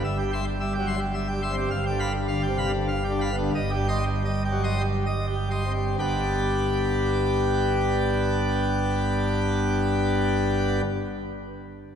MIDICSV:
0, 0, Header, 1, 2, 480
1, 0, Start_track
1, 0, Key_signature, 1, "major"
1, 0, Tempo, 559180
1, 43, Time_signature, 3, 2, 24, 8
1, 1963, Tempo, 626305
1, 2923, Tempo, 710059
1, 3403, Tempo, 806452
1, 3883, Tempo, 938967
1, 4363, Tempo, 1003344
1, 7213, End_track
2, 0, Start_track
2, 0, Title_t, "Pipe organ"
2, 0, Program_c, 0, 19
2, 35, Note_on_c, 0, 76, 70
2, 38, Note_on_c, 0, 31, 76
2, 39, Note_on_c, 0, 43, 83
2, 145, Note_off_c, 0, 76, 0
2, 159, Note_on_c, 0, 67, 64
2, 198, Note_on_c, 0, 55, 64
2, 267, Note_off_c, 0, 67, 0
2, 282, Note_on_c, 0, 76, 62
2, 284, Note_on_c, 0, 84, 93
2, 341, Note_off_c, 0, 55, 0
2, 382, Note_off_c, 0, 76, 0
2, 383, Note_off_c, 0, 84, 0
2, 400, Note_on_c, 0, 55, 69
2, 497, Note_off_c, 0, 55, 0
2, 514, Note_on_c, 0, 55, 65
2, 516, Note_on_c, 0, 76, 65
2, 623, Note_off_c, 0, 76, 0
2, 635, Note_on_c, 0, 67, 81
2, 657, Note_off_c, 0, 55, 0
2, 678, Note_on_c, 0, 54, 63
2, 741, Note_off_c, 0, 67, 0
2, 748, Note_on_c, 0, 84, 74
2, 754, Note_on_c, 0, 76, 69
2, 811, Note_off_c, 0, 54, 0
2, 819, Note_on_c, 0, 55, 73
2, 845, Note_off_c, 0, 55, 0
2, 851, Note_off_c, 0, 84, 0
2, 855, Note_off_c, 0, 76, 0
2, 862, Note_on_c, 0, 55, 76
2, 972, Note_off_c, 0, 55, 0
2, 979, Note_on_c, 0, 76, 73
2, 1091, Note_off_c, 0, 76, 0
2, 1098, Note_on_c, 0, 67, 71
2, 1152, Note_on_c, 0, 55, 69
2, 1210, Note_off_c, 0, 67, 0
2, 1223, Note_on_c, 0, 76, 72
2, 1224, Note_on_c, 0, 84, 82
2, 1294, Note_off_c, 0, 55, 0
2, 1305, Note_on_c, 0, 60, 76
2, 1328, Note_off_c, 0, 76, 0
2, 1328, Note_off_c, 0, 84, 0
2, 1352, Note_on_c, 0, 55, 77
2, 1434, Note_off_c, 0, 31, 0
2, 1434, Note_off_c, 0, 43, 0
2, 1444, Note_off_c, 0, 60, 0
2, 1454, Note_off_c, 0, 55, 0
2, 1463, Note_on_c, 0, 43, 99
2, 1465, Note_on_c, 0, 77, 82
2, 1467, Note_on_c, 0, 31, 87
2, 1576, Note_off_c, 0, 77, 0
2, 1599, Note_on_c, 0, 67, 77
2, 1642, Note_on_c, 0, 50, 75
2, 1705, Note_off_c, 0, 67, 0
2, 1716, Note_on_c, 0, 77, 76
2, 1716, Note_on_c, 0, 83, 112
2, 1784, Note_off_c, 0, 50, 0
2, 1820, Note_off_c, 0, 77, 0
2, 1820, Note_off_c, 0, 83, 0
2, 1835, Note_on_c, 0, 50, 80
2, 1940, Note_off_c, 0, 50, 0
2, 1957, Note_on_c, 0, 50, 77
2, 1959, Note_on_c, 0, 77, 74
2, 2061, Note_off_c, 0, 77, 0
2, 2073, Note_on_c, 0, 67, 88
2, 2095, Note_off_c, 0, 50, 0
2, 2114, Note_on_c, 0, 48, 68
2, 2177, Note_off_c, 0, 67, 0
2, 2184, Note_on_c, 0, 77, 83
2, 2189, Note_on_c, 0, 83, 91
2, 2245, Note_off_c, 0, 48, 0
2, 2268, Note_on_c, 0, 50, 78
2, 2286, Note_off_c, 0, 77, 0
2, 2289, Note_off_c, 0, 83, 0
2, 2290, Note_off_c, 0, 50, 0
2, 2306, Note_on_c, 0, 50, 84
2, 2412, Note_off_c, 0, 50, 0
2, 2420, Note_on_c, 0, 77, 86
2, 2531, Note_off_c, 0, 77, 0
2, 2544, Note_on_c, 0, 67, 71
2, 2589, Note_on_c, 0, 50, 83
2, 2655, Note_off_c, 0, 67, 0
2, 2671, Note_on_c, 0, 83, 89
2, 2675, Note_on_c, 0, 77, 77
2, 2736, Note_off_c, 0, 50, 0
2, 2758, Note_on_c, 0, 59, 79
2, 2777, Note_off_c, 0, 83, 0
2, 2780, Note_off_c, 0, 77, 0
2, 2805, Note_on_c, 0, 50, 81
2, 2889, Note_off_c, 0, 43, 0
2, 2891, Note_off_c, 0, 31, 0
2, 2900, Note_off_c, 0, 59, 0
2, 2909, Note_off_c, 0, 50, 0
2, 2929, Note_on_c, 0, 31, 98
2, 2929, Note_on_c, 0, 75, 79
2, 2932, Note_on_c, 0, 43, 92
2, 3030, Note_off_c, 0, 75, 0
2, 3040, Note_on_c, 0, 67, 77
2, 3079, Note_on_c, 0, 55, 78
2, 3145, Note_off_c, 0, 67, 0
2, 3157, Note_on_c, 0, 75, 65
2, 3157, Note_on_c, 0, 84, 112
2, 3221, Note_off_c, 0, 55, 0
2, 3260, Note_off_c, 0, 75, 0
2, 3260, Note_off_c, 0, 84, 0
2, 3282, Note_on_c, 0, 55, 77
2, 3388, Note_off_c, 0, 55, 0
2, 3401, Note_on_c, 0, 55, 77
2, 3404, Note_on_c, 0, 75, 80
2, 3505, Note_off_c, 0, 75, 0
2, 3521, Note_on_c, 0, 67, 81
2, 3538, Note_off_c, 0, 55, 0
2, 3563, Note_on_c, 0, 54, 67
2, 3624, Note_off_c, 0, 67, 0
2, 3635, Note_on_c, 0, 75, 75
2, 3635, Note_on_c, 0, 84, 86
2, 3695, Note_off_c, 0, 54, 0
2, 3724, Note_on_c, 0, 55, 65
2, 3738, Note_off_c, 0, 75, 0
2, 3738, Note_off_c, 0, 84, 0
2, 3750, Note_off_c, 0, 55, 0
2, 3762, Note_on_c, 0, 55, 76
2, 3873, Note_off_c, 0, 55, 0
2, 3885, Note_on_c, 0, 75, 67
2, 3985, Note_off_c, 0, 75, 0
2, 3994, Note_on_c, 0, 67, 68
2, 4035, Note_on_c, 0, 55, 57
2, 4101, Note_off_c, 0, 67, 0
2, 4114, Note_on_c, 0, 84, 70
2, 4115, Note_on_c, 0, 75, 65
2, 4179, Note_off_c, 0, 55, 0
2, 4197, Note_on_c, 0, 60, 61
2, 4218, Note_off_c, 0, 84, 0
2, 4219, Note_off_c, 0, 75, 0
2, 4237, Note_on_c, 0, 55, 60
2, 4338, Note_off_c, 0, 60, 0
2, 4344, Note_off_c, 0, 55, 0
2, 4345, Note_off_c, 0, 31, 0
2, 4346, Note_off_c, 0, 43, 0
2, 4361, Note_on_c, 0, 71, 55
2, 4362, Note_on_c, 0, 43, 66
2, 4362, Note_on_c, 0, 50, 55
2, 4362, Note_on_c, 0, 59, 62
2, 4362, Note_on_c, 0, 67, 56
2, 4363, Note_on_c, 0, 62, 57
2, 4364, Note_on_c, 0, 31, 59
2, 6664, Note_off_c, 0, 71, 0
2, 6665, Note_off_c, 0, 43, 0
2, 6665, Note_off_c, 0, 50, 0
2, 6665, Note_off_c, 0, 59, 0
2, 6665, Note_off_c, 0, 67, 0
2, 6666, Note_off_c, 0, 31, 0
2, 6666, Note_off_c, 0, 62, 0
2, 7213, End_track
0, 0, End_of_file